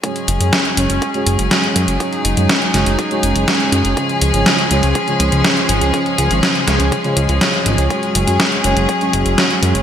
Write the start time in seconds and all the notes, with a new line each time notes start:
0.03 F#3 G#3 C#4 F#4 G#4 C#5, kick, closed hi-hat
0.16 closed hi-hat
0.28 F#1, closed hi-hat
0.40 F#2 G#3 C#4 F#4 C#5, closed hi-hat
0.53 kick, snare, closed hi-hat
0.65 closed hi-hat
0.77 F#1 G#3 C#4 F#4 C#5, closed hi-hat
0.90 F#1, closed hi-hat
1.02 kick, closed hi-hat
1.14 G#3 C#4 F#4 C#5, closed hi-hat
1.26 F#1, closed hi-hat
1.39 F#1, closed hi-hat
1.51 G#3 C#4 F#4 C#5, kick, snare, closed hi-hat
1.64 closed hi-hat
1.76 F#2, closed hi-hat
1.88 F#1, closed hi-hat
2.00 G#3 C#4 D#4 F#4 C#5, kick, closed hi-hat
2.13 closed hi-hat
2.25 F#1, closed hi-hat
2.37 F#2 G#3 C#4 F#4 C#5, closed hi-hat
2.49 kick, snare, closed hi-hat
2.62 closed hi-hat
2.74 F#1 G#3 C#4 F#4 C#5, snare, closed hi-hat
2.86 F#1, closed hi-hat
2.99 kick, closed hi-hat
3.11 G#3 C#4 F#4 C#5, closed hi-hat
3.23 F#1, closed hi-hat
3.35 F#1, closed hi-hat
3.48 G#3 C#4 F#4 C#5, kick, snare, closed hi-hat
3.60 closed hi-hat
3.72 F#2, closed hi-hat
3.85 F#1, closed hi-hat
3.97 C#3 F3 G#3 C#4 F4 C#5, kick, closed hi-hat
4.09 closed hi-hat
4.22 C#2, closed hi-hat
4.34 G#1 C#3 G#3 C#4 F4 C#5, closed hi-hat
4.46 kick, snare, closed hi-hat
4.59 closed hi-hat
4.71 C#2 C#3 G#3 C#4 F4 C#5, closed hi-hat
4.83 C#2, closed hi-hat
4.95 kick, closed hi-hat
5.07 C#3 G#3 C#4 F4 C#5, closed hi-hat
5.20 C#2, closed hi-hat
5.32 C#2, closed hi-hat
5.44 C#3 G#3 C#4 F4 C#5, kick, snare, closed hi-hat
5.57 closed hi-hat
5.69 G#1, closed hi-hat
5.81 C#2, closed hi-hat
5.94 C#3 G#3 C#4 F4 C#5, kick, closed hi-hat
6.06 closed hi-hat
6.18 C#2, closed hi-hat
6.31 G#1 C#3 G#3 C#4 F4 C#5, closed hi-hat
6.43 kick, snare, closed hi-hat
6.55 closed hi-hat
6.67 C#2 C#3 G#3 C#4 F4 C#5, snare, closed hi-hat
6.80 C#2, closed hi-hat
6.92 kick, closed hi-hat
7.04 C#3 G#3 C#4 F4 C#5, closed hi-hat
7.17 C#2, closed hi-hat
7.29 C#2, closed hi-hat
7.41 C#3 G#3 C#4 F4 C#5, kick, snare, closed hi-hat
7.54 closed hi-hat
7.66 G#1, closed hi-hat
7.78 C#2, closed hi-hat
7.90 F#3 G#3 C#4 F#4 G#4 C#5, kick, closed hi-hat
8.03 closed hi-hat
8.15 F#1, closed hi-hat
8.27 F#2 G#3 C#4 F#4 C#5, closed hi-hat
8.40 kick, snare, closed hi-hat
8.52 closed hi-hat
8.64 F#1 G#3 C#4 F#4 C#5, closed hi-hat
8.77 F#1, closed hi-hat
8.89 kick, closed hi-hat
9.01 G#3 C#4 F#4 C#5, closed hi-hat
9.13 F#1, closed hi-hat
9.26 F#1, closed hi-hat
9.38 G#3 C#4 F#4 C#5, kick, snare, closed hi-hat
9.50 closed hi-hat
9.63 F#2, closed hi-hat
9.75 F#1, closed hi-hat